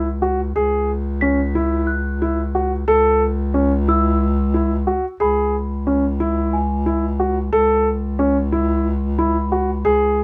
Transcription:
0.00 0.52 C#2 medium
0.22 0.39 F#4 medium
0.55 2.83 C#2 medium
0.55 0.89 G#4 medium
1.21 1.39 C#4 medium
1.21 2.99 B6 medium
1.55 1.89 E4 medium
1.87 3.16 F#6 medium
2.22 2.38 E4 medium
2.55 2.72 F#4 medium
2.87 5.03 C#2 medium
2.87 3.21 A4 medium
3.54 3.71 C#4 medium
3.88 4.21 E4 medium
3.88 5.50 E6 medium
4.54 4.71 E4 medium
4.87 5.04 F#4 medium
5.20 7.49 C#2 medium
5.20 5.54 G#4 medium
5.20 6.98 B5 soft
5.87 6.03 C#4 medium
6.20 6.54 E4 medium
6.53 7.82 G#5 soft
6.86 7.03 E4 medium
7.20 7.36 F#4 medium
7.53 9.81 C#2 medium
7.53 7.86 A4 medium
8.19 8.36 C#4 medium
8.52 8.86 E4 medium
9.19 9.35 E4 medium
9.19 10.14 B5 medium
9.52 9.69 F#4 medium
9.85 10.24 C#2 medium
9.85 10.19 G#4 medium

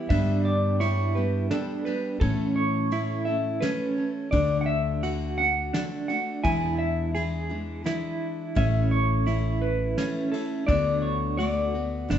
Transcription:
0.00 0.10 E3 soft
0.00 0.10 G4 medium
0.09 1.47 G2 medium
0.09 0.81 G2 medium
0.09 0.81 D3 medium
0.09 0.80 G3 medium
0.09 0.81 B3 medium
0.09 0.81 D4 medium
0.09 0.82 G4 medium
0.09 0.42 E5 medium
0.09 kick medium
0.09 ride soft
0.45 0.78 D5 medium
0.80 1.16 G3 medium
0.80 1.16 B3 medium
0.80 1.16 D4 medium
0.80 1.50 E4 medium
0.80 1.14 G4 medium
0.80 1.13 C#5 medium
0.80 ride soft
1.15 1.49 G3 soft
1.15 1.50 B3 soft
1.15 1.51 D4 soft
1.15 1.51 G4 soft
1.15 1.50 B4 medium
1.51 1.86 G3 medium
1.51 1.86 B3 medium
1.51 1.86 D4 medium
1.51 1.84 G4 medium
1.51 1.84 A4 medium
1.51 snare medium
1.51 ride soft
1.85 2.21 G3 soft
1.85 2.21 B3 soft
1.85 2.22 D4 soft
1.85 2.21 G4 soft
1.85 2.19 B4 medium
1.85 ride soft
2.20 2.92 A2 medium
2.20 3.59 A2 medium
2.20 2.90 E3 medium
2.20 2.91 A3 medium
2.20 2.91 C#4 medium
2.20 2.57 A4 medium
2.20 2.93 A4 medium
2.20 kick medium
2.20 ride soft
2.56 3.23 C#5 medium
2.91 3.27 E3 medium
2.91 3.27 A3 medium
2.91 3.27 C#4 medium
2.91 3.61 E4 medium
2.91 3.26 A4 medium
2.91 ride soft
3.25 3.61 A3 soft
3.25 3.62 C#4 soft
3.25 3.63 A4 soft
3.25 3.63 E5 medium
3.61 3.98 E3 soft
3.61 3.98 A3 medium
3.61 3.97 C#4 medium
3.61 3.96 A4 medium
3.61 4.11 B4 medium
3.61 snare medium
3.61 ride soft
3.97 4.31 A3 soft
3.97 4.33 C#4 soft
3.97 4.33 A4 soft
4.31 5.70 D2 medium
4.31 5.01 D3 medium
4.31 5.02 A3 medium
4.31 5.04 D4 medium
4.31 5.04 F#4 medium
4.31 4.58 D5 medium
4.31 kick medium
4.31 ride soft
4.61 4.66 F#5 medium
4.66 5.34 E5 medium
5.03 5.39 D3 soft
5.03 5.39 A3 medium
5.03 5.38 D4 medium
5.03 5.37 F#4 medium
5.03 ride soft
5.38 5.74 A3 soft
5.38 5.74 D4 soft
5.38 5.74 F#4 soft
5.38 6.07 F#5 medium
5.74 6.10 D3 medium
5.74 6.09 A3 medium
5.74 6.09 D4 medium
5.74 6.08 F#4 medium
5.74 snare medium
5.74 ride soft
6.08 6.45 A3 soft
6.08 6.45 D4 soft
6.08 6.45 F#4 soft
6.08 6.43 F#5 medium
6.08 ride soft
6.44 7.82 E2 medium
6.44 7.15 E2 medium
6.44 7.15 B2 medium
6.44 7.14 E3 medium
6.44 7.14 G#3 medium
6.44 7.15 D4 medium
6.44 7.17 E4 medium
6.44 6.78 G#5 medium
6.44 kick medium
6.44 ride soft
6.79 7.81 E5 medium
7.15 7.50 E3 medium
7.15 7.50 G#3 medium
7.15 7.49 D4 medium
7.15 7.48 E4 medium
7.15 7.84 G#4 medium
7.15 ride soft
7.49 7.83 E3 soft
7.49 7.84 G#3 soft
7.49 7.85 D4 soft
7.49 7.85 E4 soft
7.84 8.54 E3 medium
7.84 8.55 G#3 medium
7.84 8.56 D4 medium
7.84 8.55 E4 medium
7.84 snare medium
7.84 ride soft
8.55 9.94 A1 medium
8.55 9.27 A2 medium
8.55 9.25 E3 medium
8.55 9.27 A3 medium
8.55 9.27 C#4 medium
8.55 9.27 E4 medium
8.55 8.91 E5 loud
8.55 kick medium
8.55 ride soft
8.91 9.64 C#5 medium
9.26 9.96 E3 medium
9.26 9.98 A3 medium
9.26 9.98 C#4 medium
9.26 9.98 E4 medium
9.26 ride soft
9.62 10.31 B4 medium
9.97 10.33 E3 medium
9.97 10.33 A3 medium
9.97 10.33 C#4 medium
9.97 10.32 E4 medium
9.97 snare medium
9.97 ride soft
10.32 10.68 A3 soft
10.32 10.69 C#4 soft
10.32 10.68 E4 soft
10.32 10.69 A4 medium
10.32 ride soft
10.67 12.06 D2 medium
10.67 11.37 D3 medium
10.67 11.38 A3 medium
10.67 11.39 B3 medium
10.67 11.37 D4 medium
10.67 11.39 F#4 medium
10.67 11.00 D5 medium
10.67 kick medium
10.67 ride soft
11.02 11.37 C#5 medium
11.37 11.74 D3 medium
11.37 11.74 A3 medium
11.37 11.74 B3 medium
11.37 11.73 F#4 medium
11.37 12.19 D5 medium
11.37 ride soft
11.74 12.08 A3 soft
11.74 12.09 B3 soft
11.74 12.10 F#4 soft
12.09 12.19 F#1 medium
12.09 12.19 D3 medium
12.09 12.19 A3 medium
12.09 12.19 B3 medium
12.09 12.19 D4 medium
12.09 12.19 F#4 medium
12.09 snare medium
12.09 ride soft

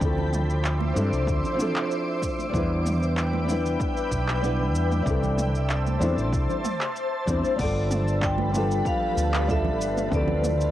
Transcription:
0.00 0.92 D2 medium
0.00 0.90 F3 medium
0.00 0.91 C4 medium
0.00 0.92 D4 medium
0.00 0.93 E4 medium
0.00 2.51 C5 medium
0.00 2.51 E5 medium
0.00 7.55 D6 medium
0.00 kick loud
0.00 shaker soft
0.05 0.94 A4 medium
0.18 low conga medium
0.33 mid tom medium
0.33 shaker medium
0.50 shaker soft
0.65 clap medium
0.65 shaker soft
0.81 high conga medium
0.94 1.10 G2 medium
0.94 1.53 F3 medium
0.94 1.55 C4 medium
0.94 1.56 D4 medium
0.94 1.56 E4 medium
0.94 1.56 A4 loud
0.94 mid tom medium
0.94 shaker medium
1.13 1.27 C2 medium
1.13 shaker soft
1.27 1.41 D2 medium
1.27 kick loud
1.27 shaker soft
1.44 low conga medium
1.44 shaker soft
1.54 2.48 F3 medium
1.54 2.49 C4 medium
1.54 2.50 D4 medium
1.59 2.51 E4 medium
1.59 2.52 A4 medium
1.59 mid tom medium
1.59 shaker medium
1.76 clap medium
1.76 shaker soft
1.91 shaker soft
2.22 kick medium
2.22 shaker medium
2.39 high conga medium
2.39 shaker soft
2.49 3.43 G3 medium
2.49 3.44 B3 medium
2.49 5.04 B4 medium
2.49 7.55 E5 medium
2.53 3.76 E2 medium
2.53 3.45 D4 medium
2.53 3.46 E4 medium
2.53 3.47 B4 medium
2.53 5.04 G5 medium
2.53 kick loud
2.53 shaker soft
2.86 mid tom medium
2.86 shaker medium
3.03 shaker soft
3.17 clap medium
3.17 shaker soft
3.33 high conga medium
3.44 4.38 G3 medium
3.44 4.39 B3 medium
3.48 4.40 D4 medium
3.48 4.40 E4 medium
3.48 4.42 B4 medium
3.48 mid tom medium
3.48 shaker medium
3.66 shaker soft
3.80 kick loud
3.80 shaker soft
3.97 shaker soft
4.11 4.75 B1 medium
4.11 kick medium
4.11 shaker medium
4.28 clap medium
4.28 shaker soft
4.42 5.01 G3 medium
4.42 5.02 B3 medium
4.42 5.03 D4 medium
4.42 5.03 E4 medium
4.42 5.04 B4 medium
4.42 shaker soft
4.60 low conga medium
4.75 5.01 E2 medium
4.75 shaker medium
4.91 mid tom medium
4.91 high conga medium
4.91 shaker soft
5.03 5.97 C2 medium
5.03 5.96 G3 medium
5.03 5.97 C4 medium
5.03 5.98 D4 medium
5.03 7.56 C5 medium
5.03 7.56 A5 medium
5.03 kick loud
5.07 5.99 E4 medium
5.07 6.00 A4 medium
5.07 shaker soft
5.23 low conga medium
5.23 shaker soft
5.38 mid tom medium
5.38 shaker medium
5.55 shaker soft
5.69 clap medium
5.69 shaker soft
5.87 high conga medium
5.87 shaker soft
5.99 6.15 E2 medium
5.99 6.60 G3 medium
5.99 6.60 C4 medium
5.99 6.61 D4 medium
5.99 6.61 E4 medium
5.99 6.62 A4 loud
5.99 mid tom medium
5.99 shaker medium
6.17 6.33 A1 medium
6.17 shaker soft
6.33 6.46 C2 medium
6.33 kick loud
6.33 shaker soft
6.49 low conga medium
6.49 shaker soft
6.64 mid tom medium
6.64 high conga medium
6.64 shaker medium
6.81 clap medium
6.81 shaker soft
6.96 shaker soft
7.26 7.41 E2 loud
7.26 7.53 G3 medium
7.26 7.53 C4 medium
7.26 7.54 D4 medium
7.26 7.55 E4 medium
7.26 7.55 C5 medium
7.26 kick medium
7.26 shaker medium
7.43 high conga medium
7.43 shaker soft
7.56 8.81 G1 medium
7.56 8.49 G3 medium
7.56 10.10 G3 medium
7.56 8.50 B3 medium
7.56 8.50 D4 medium
7.56 kick loud
7.56 crash loud
7.56 shaker soft
7.60 10.71 F3 medium
7.60 8.51 F4 medium
7.60 10.10 A4 medium
7.60 8.52 A4 loud
7.60 10.10 B4 medium
7.60 8.25 D5 loud
7.91 mid tom medium
7.91 shaker medium
8.08 shaker soft
8.22 8.88 G5 loud
8.22 kick loud
8.22 clap medium
8.22 shaker soft
8.38 high conga loud
8.51 9.43 G3 medium
8.51 9.44 B3 medium
8.51 9.45 D4 medium
8.51 mid tom medium
8.55 9.46 F4 medium
8.55 9.47 A4 medium
8.55 shaker medium
8.71 shaker soft
8.85 9.51 F5 medium
8.85 kick loud
8.85 shaker soft
9.17 9.79 D2 medium
9.17 shaker medium
9.34 clap medium
9.34 shaker soft
9.47 10.07 G3 medium
9.47 10.08 B3 medium
9.47 10.08 D4 medium
9.47 10.09 F4 medium
9.47 10.09 A4 medium
9.47 10.09 E5 loud
9.47 kick loud
9.47 shaker soft
9.64 low conga medium
9.79 10.06 G1 loud
9.79 shaker medium
9.97 mid tom medium
9.97 high conga medium
9.97 shaker soft
10.08 10.71 D2 loud
10.08 10.71 D3 medium
10.08 10.71 F3 medium
10.08 10.71 C4 medium
10.08 10.71 D4 medium
10.08 10.71 E4 medium
10.08 kick loud
10.13 10.71 E4 medium
10.13 10.71 A4 medium
10.13 10.71 D5 loud
10.13 shaker soft
10.28 low conga medium
10.44 mid tom medium
10.44 shaker medium
10.61 shaker soft

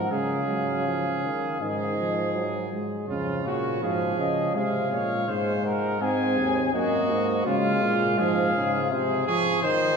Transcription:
0.00 0.11 G#2 medium
0.00 0.10 F3 medium
0.00 0.13 A#4 medium
0.00 0.11 F#5 medium
0.11 1.30 C#3 medium
0.11 0.48 G#3 medium
0.11 1.60 G#4 medium
0.11 1.63 F5 medium
0.49 0.88 F#3 medium
0.86 1.23 F3 medium
1.24 1.60 D#3 medium
1.60 2.68 G#2 medium
1.60 1.97 D#3 medium
1.60 2.69 G#4 medium
1.60 2.72 D#5 medium
1.98 2.36 F3 medium
2.35 2.71 F#3 medium
2.72 3.08 G#3 medium
3.08 3.43 F2 medium
3.08 3.78 C#3 medium
3.08 3.43 F4 medium
3.45 3.84 A#2 medium
3.45 3.82 F#4 medium
3.45 3.80 C#5 medium
3.82 4.18 G#2 medium
3.82 4.57 F3 medium
3.82 4.54 G#4 medium
3.82 4.18 F5 medium
4.19 4.57 C#3 medium
4.19 4.55 D#5 medium
4.55 4.91 C3 medium
4.55 5.12 G#3 medium
4.55 4.91 G#4 medium
4.55 5.63 F5 medium
4.92 5.28 A#2 medium
4.92 5.30 C#5 medium
5.28 6.00 G#2 medium
5.28 6.00 G#3 medium
5.28 5.64 C5 medium
5.64 6.03 A#4 medium
5.64 6.00 F#5 medium
6.01 6.39 G#2 medium
6.01 6.72 C4 medium
6.01 6.73 G#4 medium
6.01 6.72 G#5 medium
6.37 6.73 D#2 medium
6.73 7.11 F#2 medium
6.73 7.45 A#3 medium
6.73 7.45 F#4 medium
6.73 7.45 D#5 medium
7.09 7.45 G#2 medium
7.46 7.84 C#3 medium
7.46 8.17 G#3 medium
7.46 8.20 F4 medium
7.46 8.17 F5 medium
7.82 8.19 A#2 medium
8.18 8.53 G#2 medium
8.18 8.54 F3 medium
8.18 8.90 G#4 medium
8.18 8.94 F5 loud
8.54 8.90 G#2 medium
8.54 8.93 C#3 medium
8.91 9.27 C3 medium
8.91 9.26 G#4 medium
8.91 9.27 C5 medium
9.27 9.65 F3 medium
9.27 9.62 G#4 loud
9.27 9.63 C#5 medium
9.63 9.97 D#3 medium
9.63 9.97 C5 loud
9.63 9.97 D#5 medium

